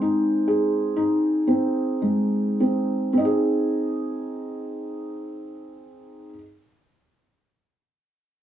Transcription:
felt piano
Already playing: G#3 C4 C5
0.02 D#4
0.48 G#4
0.96 D#4
1.47 C4
2.02 G#3
2.60 C4
3.13 C4
3.17 D#4 D#5
3.25 G#4

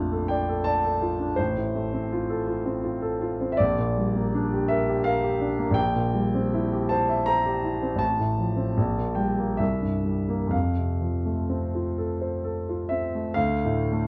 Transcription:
grand piano
Already playing: A#1 F2 A3 D4 F4 F5
0.12 A4
0.28 D5 G5
0.49 A4
0.64 D5 A5
0.84 A4
1.02 F4
1.20 D4
1.36 A1 C5
1.57 A2
1.75 A3
1.93 C4
2.12 F4
2.30 A4
2.47 F4
2.66 C4
2.84 F4
3.02 A4
3.21 F4
3.41 C4
3.52 E5
3.57 A#1 D5
3.79 A#2
3.97 G3
4.16 A#3
4.34 D4
4.53 G4
4.68 A#4 E5
4.88 G4
5.04 A#4 F5
5.23 G4
5.41 D4
5.59 A#3
5.71 A#1 G5
5.95 A#2
6.14 G3
6.35 C4
6.54 E4
6.72 G4
6.89 C5 A5
7.09 E5
7.26 C5 A#5
7.46 G4
7.63 E4
7.83 C4
7.96 A1 A5
8.19 A2
8.38 F3
8.56 C4
8.77 A#1
8.97 A#2
9.15 G3 G5
9.38 A#3
9.57 C2 E5
9.81 G2
10.05 G3
10.29 A#3
10.47 F2 F5
10.77 C3
11.01 F3
11.25 A3
11.49 C4
11.74 F4
11.98 A4
12.21 C5
12.44 A4
12.69 F4
12.89 C4 E5
13.15 A3
13.34 D2 F5
13.65 A2
13.92 A3

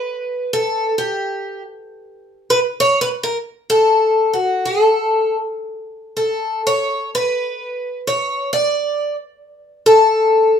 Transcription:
twelve-string acoustic guitar
Already playing: B4
0.53 A4
0.98 G4
2.50 B4
2.80 C#5
3.01 B4
3.23 A#4
3.70 A4
4.34 F#4
4.65 A4
6.17 A4
6.67 C#5
7.15 B4
8.07 C#5
8.53 D5
9.86 A4

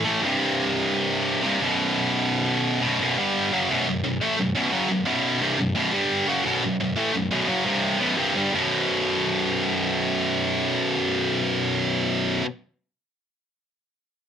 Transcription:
distorted electric guitar
0.05 E3 A3
0.09 A2
0.22 C2 G2
0.26 C3
1.43 C2 G2 C3
1.61 B1 F#2 B2
2.82 B1 F#2 B2
3.01 B1 F#2 B2
3.17 G2 D3 G3
3.52 F#2 C#3 F#3
3.70 B1 F#2 B2
3.87 B1 F#2
4.04 B1 F#2
4.21 A2 E3 A3
4.38 B1 F#2
4.55 B1 F#2 B2
4.72 F#2 C#3 F#3
4.90 B1 F#2
5.05 B1 F#2 B2
5.40 C2 G2 C3
5.58 B1 F#2
5.75 B1 F#2 B2
5.93 G2 D3 G3
6.27 F#2 C#3 F#3
6.45 B1 F#2 B2
6.63 B1 F#2
6.80 B1 F#2
6.97 A2 E3 A3
7.14 B1 F#2
7.31 B1 F#2 B2
7.48 F#2 C#3 F#3
7.65 C2 G2 C3
7.99 B1 F#2 B2
8.17 C2 G2 C3
8.35 G2 D3 G3
8.52 B1 F#2 B2

